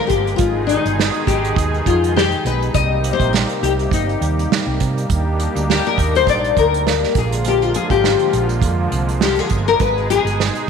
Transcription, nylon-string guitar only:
0, 0, Header, 1, 2, 480
1, 0, Start_track
1, 0, Key_signature, -3, "major"
1, 0, Tempo, 588466
1, 318, Time_signature, 4, 2, 24, 8
1, 8725, End_track
2, 0, Start_track
2, 0, Title_t, "Nylon-string guitar"
2, 0, Program_c, 0, 24
2, 57, Note_on_c, 0, 67, 96
2, 295, Note_on_c, 0, 65, 84
2, 315, Note_off_c, 0, 67, 0
2, 529, Note_off_c, 0, 65, 0
2, 544, Note_on_c, 0, 63, 91
2, 998, Note_off_c, 0, 63, 0
2, 1035, Note_on_c, 0, 67, 76
2, 1260, Note_off_c, 0, 67, 0
2, 1525, Note_on_c, 0, 65, 75
2, 1765, Note_on_c, 0, 67, 84
2, 1768, Note_off_c, 0, 65, 0
2, 1985, Note_off_c, 0, 67, 0
2, 2010, Note_on_c, 0, 71, 96
2, 2233, Note_off_c, 0, 71, 0
2, 2237, Note_on_c, 0, 75, 94
2, 2535, Note_off_c, 0, 75, 0
2, 2553, Note_on_c, 0, 72, 96
2, 2714, Note_off_c, 0, 72, 0
2, 2714, Note_on_c, 0, 70, 86
2, 2960, Note_on_c, 0, 67, 85
2, 2963, Note_off_c, 0, 70, 0
2, 3025, Note_off_c, 0, 67, 0
2, 3209, Note_on_c, 0, 63, 78
2, 3891, Note_off_c, 0, 63, 0
2, 4648, Note_on_c, 0, 67, 83
2, 4779, Note_off_c, 0, 67, 0
2, 4786, Note_on_c, 0, 70, 101
2, 5002, Note_off_c, 0, 70, 0
2, 5026, Note_on_c, 0, 72, 96
2, 5129, Note_off_c, 0, 72, 0
2, 5133, Note_on_c, 0, 74, 100
2, 5367, Note_off_c, 0, 74, 0
2, 5371, Note_on_c, 0, 70, 86
2, 5854, Note_off_c, 0, 70, 0
2, 5857, Note_on_c, 0, 68, 90
2, 6072, Note_off_c, 0, 68, 0
2, 6098, Note_on_c, 0, 67, 85
2, 6219, Note_off_c, 0, 67, 0
2, 6219, Note_on_c, 0, 65, 85
2, 6323, Note_off_c, 0, 65, 0
2, 6326, Note_on_c, 0, 68, 73
2, 6446, Note_off_c, 0, 68, 0
2, 6449, Note_on_c, 0, 67, 85
2, 6897, Note_off_c, 0, 67, 0
2, 7525, Note_on_c, 0, 67, 82
2, 7658, Note_off_c, 0, 67, 0
2, 7658, Note_on_c, 0, 68, 90
2, 7892, Note_off_c, 0, 68, 0
2, 7895, Note_on_c, 0, 70, 100
2, 7995, Note_off_c, 0, 70, 0
2, 7998, Note_on_c, 0, 71, 115
2, 8236, Note_off_c, 0, 71, 0
2, 8240, Note_on_c, 0, 68, 99
2, 8686, Note_off_c, 0, 68, 0
2, 8725, End_track
0, 0, End_of_file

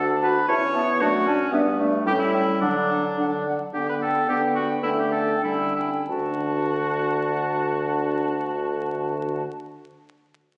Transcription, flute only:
0, 0, Header, 1, 2, 480
1, 0, Start_track
1, 0, Key_signature, 2, "major"
1, 0, Tempo, 523560
1, 447, Time_signature, 2, 2, 24, 8
1, 1887, Tempo, 553506
1, 4287, Tempo, 598205
1, 4767, Tempo, 660066
1, 8510, End_track
2, 0, Start_track
2, 0, Title_t, "Flute"
2, 0, Program_c, 0, 73
2, 192, Note_on_c, 0, 81, 57
2, 247, Note_off_c, 0, 81, 0
2, 447, Note_on_c, 0, 81, 66
2, 502, Note_off_c, 0, 81, 0
2, 680, Note_on_c, 0, 81, 62
2, 735, Note_off_c, 0, 81, 0
2, 932, Note_on_c, 0, 81, 65
2, 987, Note_off_c, 0, 81, 0
2, 1161, Note_on_c, 0, 81, 69
2, 1216, Note_off_c, 0, 81, 0
2, 1396, Note_on_c, 0, 76, 77
2, 1451, Note_off_c, 0, 76, 0
2, 1643, Note_on_c, 0, 76, 69
2, 1698, Note_off_c, 0, 76, 0
2, 1887, Note_on_c, 0, 79, 69
2, 1941, Note_off_c, 0, 79, 0
2, 2125, Note_on_c, 0, 79, 63
2, 2180, Note_off_c, 0, 79, 0
2, 2375, Note_on_c, 0, 78, 58
2, 2430, Note_off_c, 0, 78, 0
2, 2619, Note_on_c, 0, 78, 58
2, 2673, Note_off_c, 0, 78, 0
2, 2870, Note_on_c, 0, 78, 56
2, 2923, Note_off_c, 0, 78, 0
2, 3106, Note_on_c, 0, 78, 55
2, 3159, Note_off_c, 0, 78, 0
2, 3351, Note_on_c, 0, 79, 43
2, 3576, Note_off_c, 0, 79, 0
2, 3582, Note_on_c, 0, 79, 43
2, 3808, Note_off_c, 0, 79, 0
2, 3817, Note_on_c, 0, 79, 43
2, 4045, Note_off_c, 0, 79, 0
2, 4053, Note_on_c, 0, 79, 42
2, 4281, Note_off_c, 0, 79, 0
2, 4286, Note_on_c, 0, 79, 45
2, 4512, Note_off_c, 0, 79, 0
2, 4517, Note_on_c, 0, 79, 41
2, 4761, Note_off_c, 0, 79, 0
2, 4767, Note_on_c, 0, 79, 41
2, 5000, Note_off_c, 0, 79, 0
2, 5004, Note_on_c, 0, 79, 32
2, 5237, Note_off_c, 0, 79, 0
2, 5241, Note_on_c, 0, 81, 35
2, 7681, Note_off_c, 0, 81, 0
2, 8510, End_track
0, 0, End_of_file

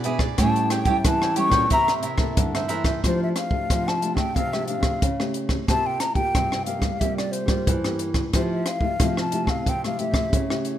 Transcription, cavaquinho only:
0, 0, Header, 1, 2, 480
1, 0, Start_track
1, 0, Tempo, 662252
1, 284, Time_signature, 4, 2, 24, 8
1, 7817, End_track
2, 0, Start_track
2, 0, Title_t, "Cavaquinho"
2, 0, Program_c, 0, 24
2, 34, Note_on_c, 0, 64, 71
2, 39, Note_on_c, 0, 68, 83
2, 42, Note_on_c, 0, 71, 78
2, 44, Note_on_c, 0, 74, 86
2, 136, Note_off_c, 0, 74, 0
2, 143, Note_off_c, 0, 71, 0
2, 145, Note_on_c, 0, 74, 53
2, 148, Note_off_c, 0, 68, 0
2, 149, Note_off_c, 0, 64, 0
2, 152, Note_on_c, 0, 71, 46
2, 157, Note_on_c, 0, 68, 42
2, 265, Note_off_c, 0, 74, 0
2, 268, Note_off_c, 0, 71, 0
2, 271, Note_off_c, 0, 68, 0
2, 275, Note_on_c, 0, 67, 74
2, 280, Note_on_c, 0, 69, 79
2, 284, Note_on_c, 0, 73, 79
2, 288, Note_on_c, 0, 79, 86
2, 504, Note_off_c, 0, 67, 0
2, 506, Note_off_c, 0, 69, 0
2, 509, Note_off_c, 0, 73, 0
2, 512, Note_on_c, 0, 67, 48
2, 515, Note_on_c, 0, 69, 52
2, 516, Note_off_c, 0, 79, 0
2, 518, Note_on_c, 0, 73, 60
2, 524, Note_on_c, 0, 79, 55
2, 615, Note_off_c, 0, 67, 0
2, 616, Note_off_c, 0, 69, 0
2, 618, Note_off_c, 0, 73, 0
2, 623, Note_off_c, 0, 79, 0
2, 624, Note_on_c, 0, 67, 77
2, 625, Note_on_c, 0, 69, 79
2, 627, Note_on_c, 0, 73, 81
2, 632, Note_on_c, 0, 79, 87
2, 699, Note_off_c, 0, 67, 0
2, 700, Note_off_c, 0, 69, 0
2, 701, Note_off_c, 0, 73, 0
2, 703, Note_off_c, 0, 79, 0
2, 888, Note_on_c, 0, 79, 47
2, 895, Note_on_c, 0, 73, 45
2, 900, Note_on_c, 0, 69, 44
2, 979, Note_off_c, 0, 69, 0
2, 985, Note_off_c, 0, 73, 0
2, 986, Note_on_c, 0, 67, 76
2, 988, Note_on_c, 0, 69, 72
2, 989, Note_off_c, 0, 79, 0
2, 994, Note_on_c, 0, 73, 82
2, 998, Note_on_c, 0, 79, 73
2, 1095, Note_off_c, 0, 79, 0
2, 1102, Note_off_c, 0, 73, 0
2, 1104, Note_on_c, 0, 79, 53
2, 1105, Note_off_c, 0, 67, 0
2, 1106, Note_off_c, 0, 69, 0
2, 1111, Note_on_c, 0, 73, 50
2, 1114, Note_on_c, 0, 69, 46
2, 1224, Note_off_c, 0, 79, 0
2, 1227, Note_off_c, 0, 73, 0
2, 1229, Note_off_c, 0, 69, 0
2, 1241, Note_on_c, 0, 64, 77
2, 1246, Note_on_c, 0, 70, 86
2, 1252, Note_on_c, 0, 72, 81
2, 1254, Note_on_c, 0, 76, 86
2, 1462, Note_off_c, 0, 64, 0
2, 1465, Note_off_c, 0, 70, 0
2, 1468, Note_off_c, 0, 72, 0
2, 1471, Note_on_c, 0, 64, 54
2, 1473, Note_off_c, 0, 76, 0
2, 1473, Note_on_c, 0, 70, 63
2, 1477, Note_on_c, 0, 72, 53
2, 1482, Note_on_c, 0, 76, 57
2, 1827, Note_off_c, 0, 64, 0
2, 1828, Note_off_c, 0, 70, 0
2, 1830, Note_off_c, 0, 72, 0
2, 1833, Note_off_c, 0, 76, 0
2, 1846, Note_on_c, 0, 76, 45
2, 1851, Note_on_c, 0, 72, 41
2, 1858, Note_on_c, 0, 70, 37
2, 1942, Note_off_c, 0, 70, 0
2, 1946, Note_on_c, 0, 64, 75
2, 1948, Note_off_c, 0, 72, 0
2, 1949, Note_off_c, 0, 76, 0
2, 1950, Note_on_c, 0, 70, 87
2, 1956, Note_on_c, 0, 72, 84
2, 1958, Note_on_c, 0, 76, 94
2, 2054, Note_off_c, 0, 76, 0
2, 2060, Note_off_c, 0, 72, 0
2, 2063, Note_on_c, 0, 76, 48
2, 2065, Note_off_c, 0, 64, 0
2, 2065, Note_off_c, 0, 70, 0
2, 2069, Note_on_c, 0, 72, 49
2, 2074, Note_on_c, 0, 70, 39
2, 2183, Note_off_c, 0, 76, 0
2, 2186, Note_off_c, 0, 72, 0
2, 2189, Note_off_c, 0, 70, 0
2, 7817, End_track
0, 0, End_of_file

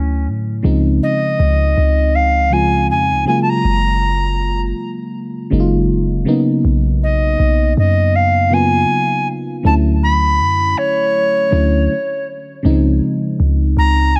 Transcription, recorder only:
0, 0, Header, 1, 2, 480
1, 0, Start_track
1, 0, Key_signature, -5, "major"
1, 0, Tempo, 750000
1, 412, Time_signature, 4, 2, 24, 8
1, 9085, End_track
2, 0, Start_track
2, 0, Title_t, "Recorder"
2, 0, Program_c, 0, 74
2, 0, Note_on_c, 0, 61, 82
2, 176, Note_off_c, 0, 61, 0
2, 660, Note_on_c, 0, 75, 97
2, 1379, Note_on_c, 0, 77, 91
2, 1388, Note_off_c, 0, 75, 0
2, 1619, Note_on_c, 0, 80, 105
2, 1629, Note_off_c, 0, 77, 0
2, 1855, Note_off_c, 0, 80, 0
2, 1859, Note_on_c, 0, 80, 100
2, 2079, Note_off_c, 0, 80, 0
2, 2097, Note_on_c, 0, 80, 93
2, 2176, Note_off_c, 0, 80, 0
2, 2190, Note_on_c, 0, 81, 75
2, 2238, Note_on_c, 0, 82, 112
2, 2247, Note_off_c, 0, 81, 0
2, 2954, Note_off_c, 0, 82, 0
2, 4501, Note_on_c, 0, 75, 87
2, 4951, Note_off_c, 0, 75, 0
2, 4984, Note_on_c, 0, 75, 98
2, 5221, Note_on_c, 0, 77, 99
2, 5230, Note_off_c, 0, 75, 0
2, 5463, Note_on_c, 0, 80, 107
2, 5473, Note_off_c, 0, 77, 0
2, 5938, Note_off_c, 0, 80, 0
2, 6183, Note_on_c, 0, 81, 95
2, 6236, Note_off_c, 0, 81, 0
2, 6421, Note_on_c, 0, 83, 109
2, 6899, Note_on_c, 0, 73, 125
2, 6909, Note_off_c, 0, 83, 0
2, 7856, Note_off_c, 0, 73, 0
2, 8822, Note_on_c, 0, 82, 113
2, 9061, Note_on_c, 0, 80, 116
2, 9071, Note_off_c, 0, 82, 0
2, 9085, Note_off_c, 0, 80, 0
2, 9085, End_track
0, 0, End_of_file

